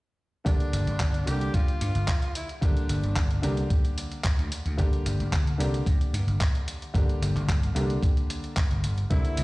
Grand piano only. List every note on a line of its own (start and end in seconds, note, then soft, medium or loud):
0.45 1.23 D3 medium
0.45 1.24 G3 medium
0.45 1.24 A#3 medium
0.45 1.24 D4 medium
0.45 1.24 G4 medium
1.26 2.58 D3 medium
1.26 2.59 G3 medium
1.26 2.59 A#3 medium
1.26 2.59 D4 medium
1.26 2.59 G4 medium
2.61 3.40 D3 medium
2.61 3.40 G3 medium
2.61 3.40 A#3 medium
2.61 3.41 D4 medium
2.61 3.41 G4 loud
3.42 4.75 D3 medium
3.42 4.75 G3 medium
3.42 4.75 A#3 medium
3.42 4.75 D4 medium
3.42 4.76 G4 loud
4.77 5.56 D3 medium
4.77 5.56 G3 medium
4.77 5.56 A#3 medium
4.77 5.57 D4 medium
4.77 5.57 G4 loud
5.58 6.91 D3 medium
5.58 6.91 G3 medium
5.58 6.91 A#3 medium
5.58 6.91 D4 medium
5.58 6.92 G4 loud
6.94 7.72 D3 medium
6.94 7.72 G3 medium
6.94 7.73 A#3 medium
6.94 7.73 D4 medium
6.94 7.73 G4 loud
7.75 9.07 D3 medium
7.75 9.07 G3 medium
7.75 9.08 A#3 medium
7.75 9.08 D4 medium
7.75 9.08 G4 medium
9.10 9.44 D3 medium
9.10 9.44 G3 medium
9.10 9.44 A#3 medium
9.10 9.44 C4 medium
9.10 9.44 E4 loud